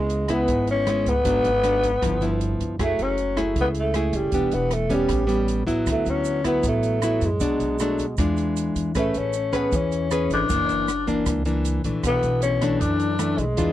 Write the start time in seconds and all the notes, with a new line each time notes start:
Already playing: C#2 C#3 G#3 B3 E4
0.10 closed hi-hat
0.28 G#3 B3 E4, kick, cross-stick, closed hi-hat
0.33 B3
0.48 G#1 G#2, kick, closed hi-hat
0.67 C#4, closed hi-hat
0.87 G#3 B3 E4, cross-stick, closed hi-hat
1.06 C#2 B3, kick, closed hi-hat
1.24 G#1 G#2 F#3 B3 D4, kick, closed hi-hat
1.44 G#1, closed hi-hat
1.63 F#3 B3 D4, cross-stick, closed hi-hat
1.83 kick, closed hi-hat
2.02 G1 G2 F3 B3 E4, kick, cross-stick, closed hi-hat
2.21 F3 B3 E4, closed hi-hat
2.41 closed hi-hat
2.60 G1, kick, closed hi-hat
2.79 F#1 F#3 A3 E4 G#4, kick, cross-stick, closed hi-hat
2.99 F#1 C#4, closed hi-hat
3.18 closed hi-hat
3.37 A3 E4 G#4, kick, cross-stick, closed hi-hat
3.56 C#2 C#3, kick, closed hi-hat
3.61 B3
3.74 closed hi-hat
3.79 A3
3.94 A3 E4 G#4, cross-stick, closed hi-hat
4.13 F#1 G3, kick, closed hi-hat
4.32 E1 E3 B3 D4 G4, kick, closed hi-hat
4.51 E1 B3, closed hi-hat
4.71 A3, cross-stick, closed hi-hat
4.90 G3 B3 C#4, kick, closed hi-hat
4.94 G3
5.08 A1 A2, kick, cross-stick, closed hi-hat
5.27 G3 B3 C#4, closed hi-hat
5.48 closed hi-hat
5.67 A1 F#3 B3 E4, kick, closed hi-hat
5.87 D2 D3, kick, cross-stick, closed hi-hat, shaker
5.91 A3
6.06 D2 C#4, closed hi-hat, shaker
6.25 closed hi-hat, shaker
6.44 F#3 B3 E4, kick, cross-stick, closed hi-hat, shaker
6.63 A1 A2, kick, closed hi-hat, shaker
6.68 A3
6.83 closed hi-hat, shaker
7.02 F#3 B3 E4, cross-stick, closed hi-hat, shaker
7.21 F#2, kick, closed hi-hat, shaker
7.26 G#3
7.40 B1 B2 F#3 D4, kick, closed hi-hat, shaker
7.60 B1, closed hi-hat, shaker
7.79 F#3 A3 D4, cross-stick, closed hi-hat, shaker
7.99 kick, closed hi-hat, shaker
8.17 E2 E3 G#3 D4 F4, kick, cross-stick, closed hi-hat, shaker
8.37 closed hi-hat, shaker
8.57 closed hi-hat, shaker
8.76 E2, kick, closed hi-hat, shaker
8.95 A1 A3 C#4 G#4 B4, kick, cross-stick, closed hi-hat, shaker
9.14 A1 C#4, closed hi-hat, shaker
9.33 closed hi-hat, shaker
9.53 B3 C#4 G#4 B4, kick, cross-stick, closed hi-hat, shaker
9.72 E2 E3 C#4, kick, closed hi-hat, shaker
9.92 closed hi-hat, shaker
10.11 C#4 G#4 B4, cross-stick, closed hi-hat, shaker
10.30 G#1 D4, kick, closed hi-hat, shaker
10.49 F#1 F#2 E3 A#3 D4, kick, closed hi-hat, shaker
10.69 F#1, closed hi-hat, shaker
10.88 cross-stick, closed hi-hat, shaker
11.07 E3 A#3 D4, kick, closed hi-hat, shaker
11.26 C#2, kick, cross-stick, closed hi-hat, shaker
11.45 E3 A#3 D4, closed hi-hat, shaker
11.65 closed hi-hat, shaker
11.84 A#1 E3 A3 D4, kick, closed hi-hat, shaker
12.03 B1 B2 B3, kick, cross-stick, closed hi-hat, shaker
12.23 B1, closed hi-hat, shaker
12.42 C#4, closed hi-hat, shaker
12.61 E3 A3 D4, kick, cross-stick, closed hi-hat, shaker
12.80 F#2 D4, kick, closed hi-hat, shaker
12.99 closed hi-hat, shaker
13.19 E3 A3 D4, cross-stick, closed hi-hat, shaker
13.38 B1 G#3, kick, closed hi-hat, shaker
13.57 E2 E3 G#3 D4 F4, kick, closed hi-hat, shaker